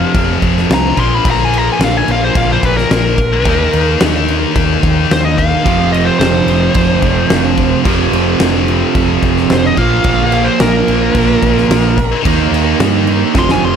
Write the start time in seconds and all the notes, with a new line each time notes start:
Already playing: F2 C3 F3 F5
0.14 F1, kick, crash
0.42 F1, kick, crash
0.57 snare
0.70 C2, snare, crash
0.74 A#5
0.97 A#1 A#2 F3 A#3 C6, kick, crash
1.15 B5
1.25 A#1, kick, crash
1.31 A#5
1.45 G#5
1.53 crash
1.58 A#5
1.73 G#5
1.79 A#1, snare, crash
1.84 F5
1.97 G#5
2.08 A#1 F5, crash
2.24 C5
2.35 A#1 F5, kick, crash
2.52 C5
2.63 A#1 B4, kick, crash
2.77 A#4, snare
2.91 A#1 A#4, snare, crash
3.18 kick, crash
3.44 D#2 D#3 A#3 D#4, kick, crash
3.73 D#2, crash
4.00 D#2, snare, crash
4.28 crash
4.55 D#2, kick, crash
4.83 D#2, kick, crash
5.11 D#2 C5, snare, crash
5.25 D#5
5.38 F5, kick, crash
5.64 F1 F2 C3, kick, crash
5.68 F3
5.93 D#5, crash
6.05 C5
6.19 F1 C5, snare, crash
6.46 F1, crash
6.74 F1, kick, crash
7.02 F1, kick, crash
7.30 F1, snare, crash
7.58 kick, crash
7.84 F1 F2 C3 F3, kick, crash
8.12 F1, crash
8.39 F1, snare, crash
8.68 crash
8.95 F1, kick, crash
9.23 F1, kick, crash
9.37 snare
9.49 F1, snare, crash
9.53 C5
9.66 D#5
9.74 A#1 A#2 F3 A#3 F5, kick, crash
9.79 A#2
10.04 A#1, kick, crash
10.32 F5, crash
10.45 C5
10.60 A#1 A#4, snare, crash
10.87 A#1, crash
11.15 A#1, kick, crash
11.42 A#1, kick, crash
11.58 snare
11.69 A#1, snare, crash
11.98 kick, crash
12.23 D#2 D#3 A#3 D#4, kick, crash
12.51 D#2, crash
12.79 G2, snare, crash
13.07 crash
13.34 F1 F2 C3, kick, snare
13.38 F3 C6
13.49 G#5, snare
13.63 F1 C6